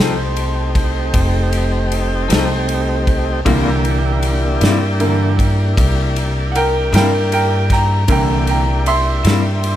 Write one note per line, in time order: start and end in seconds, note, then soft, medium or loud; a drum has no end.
0.00 1.10 C2 loud
0.00 0.21 F3 medium
0.00 3.41 A3 medium
0.00 0.21 C4 medium
0.00 3.40 C4 medium
0.00 0.21 D#4 medium
0.00 3.41 D#4 medium
0.00 3.41 G4 medium
0.00 0.21 A4 medium
0.00 1.10 C5 medium
0.00 1.10 A5 medium
0.00 snare loud
0.36 ride medium
0.75 kick medium
0.75 ride medium
1.14 2.25 F1 loud
1.14 kick loud
1.14 ride medium
1.52 ride medium
1.92 ride medium
2.28 3.41 C2 loud
2.28 2.53 F3 medium
2.28 2.53 C4 medium
2.28 2.53 D#4 medium
2.28 2.52 A4 medium
2.28 ride medium
2.33 snare loud
2.69 ride medium
3.07 kick medium
3.07 ride medium
3.45 4.57 C2 loud
3.45 3.68 C3 medium
3.45 4.57 D3 soft
3.45 4.57 E3 soft
3.45 3.69 G3 loud
3.45 8.05 A#3 medium
3.45 3.69 A#3 loud
3.45 4.58 A#3 medium
3.45 8.04 D4 medium
3.45 8.05 E4 medium
3.45 3.69 E4 medium
3.45 8.04 G4 medium
3.45 kick loud
3.45 ride medium
3.85 ride medium
4.22 ride medium
4.61 5.73 G2 loud
4.61 4.85 C3 medium
4.61 4.85 G3 medium
4.61 4.84 A#3 medium
4.61 4.84 E4 medium
4.61 snare loud
4.61 ride medium
5.00 5.34 D3 soft
5.00 5.35 E3 soft
5.00 5.35 A#3 soft
5.00 ride medium
5.39 kick medium
5.39 ride medium
5.77 6.89 C2 loud
5.77 kick loud
5.77 ride medium
6.16 ride medium
6.52 6.91 A#4 medium
6.52 6.56 F#5 medium
6.52 ride medium
6.56 6.93 G5 medium
6.92 8.04 G2 loud
6.92 7.16 C3 medium
6.92 7.16 G3 medium
6.92 7.16 A#3 medium
6.92 7.16 E4 medium
6.92 7.30 A#4 medium
6.92 7.31 G5 medium
6.92 ride medium
6.96 snare loud
7.32 7.68 A#4 medium
7.32 7.70 G5 medium
7.32 ride medium
7.70 8.07 G5 medium
7.70 8.09 A#5 medium
7.70 kick medium
7.70 snare soft
7.70 ride medium
8.08 9.21 C2 loud
8.08 8.59 D3 medium
8.08 8.60 E3 soft
8.08 9.76 A#3 medium
8.08 8.60 A#3 medium
8.08 9.76 D4 medium
8.08 9.76 E4 medium
8.08 9.76 G4 medium
8.08 8.46 G5 medium
8.08 8.47 A#5 medium
8.08 kick loud
8.08 ride loud
8.47 8.84 G5 medium
8.47 8.86 A#5 medium
8.47 ride medium
8.86 9.76 E5 medium
8.86 9.76 C6 medium
8.86 ride medium
9.23 9.76 G2 loud
9.23 9.48 C3 medium
9.23 9.48 G3 medium
9.23 9.47 A#3 medium
9.23 9.47 E4 medium
9.23 snare loud
9.23 ride medium
9.63 ride medium